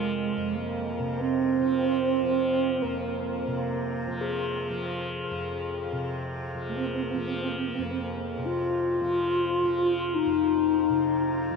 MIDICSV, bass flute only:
0, 0, Header, 1, 2, 480
1, 0, Start_track
1, 0, Key_signature, -4, "minor"
1, 0, Tempo, 500000
1, 11100, End_track
2, 0, Start_track
2, 0, Title_t, "Bass flute"
2, 0, Program_c, 0, 73
2, 0, Note_on_c, 0, 56, 70
2, 523, Note_on_c, 0, 58, 73
2, 537, Note_off_c, 0, 56, 0
2, 1146, Note_on_c, 0, 60, 90
2, 1161, Note_off_c, 0, 58, 0
2, 2704, Note_on_c, 0, 58, 76
2, 2718, Note_off_c, 0, 60, 0
2, 4590, Note_off_c, 0, 58, 0
2, 6404, Note_on_c, 0, 58, 56
2, 6489, Note_on_c, 0, 60, 58
2, 6504, Note_off_c, 0, 58, 0
2, 6576, Note_on_c, 0, 58, 57
2, 6590, Note_off_c, 0, 60, 0
2, 6658, Note_on_c, 0, 60, 64
2, 6672, Note_off_c, 0, 58, 0
2, 6738, Note_on_c, 0, 58, 60
2, 6753, Note_off_c, 0, 60, 0
2, 6817, Note_on_c, 0, 60, 66
2, 6831, Note_off_c, 0, 58, 0
2, 6884, Note_on_c, 0, 58, 61
2, 6898, Note_off_c, 0, 60, 0
2, 6977, Note_on_c, 0, 60, 54
2, 6992, Note_off_c, 0, 58, 0
2, 7041, Note_on_c, 0, 58, 61
2, 7056, Note_off_c, 0, 60, 0
2, 7120, Note_on_c, 0, 60, 57
2, 7135, Note_off_c, 0, 58, 0
2, 7178, Note_on_c, 0, 58, 62
2, 7193, Note_off_c, 0, 60, 0
2, 7265, Note_on_c, 0, 60, 53
2, 7279, Note_off_c, 0, 58, 0
2, 7349, Note_on_c, 0, 58, 58
2, 7364, Note_off_c, 0, 60, 0
2, 7432, Note_on_c, 0, 60, 56
2, 7446, Note_off_c, 0, 58, 0
2, 7502, Note_on_c, 0, 58, 54
2, 7517, Note_off_c, 0, 60, 0
2, 7582, Note_on_c, 0, 60, 57
2, 7596, Note_off_c, 0, 58, 0
2, 7666, Note_on_c, 0, 58, 66
2, 7680, Note_off_c, 0, 60, 0
2, 8111, Note_on_c, 0, 65, 82
2, 8125, Note_off_c, 0, 58, 0
2, 9737, Note_on_c, 0, 63, 89
2, 9751, Note_off_c, 0, 65, 0
2, 11100, Note_off_c, 0, 63, 0
2, 11100, End_track
0, 0, End_of_file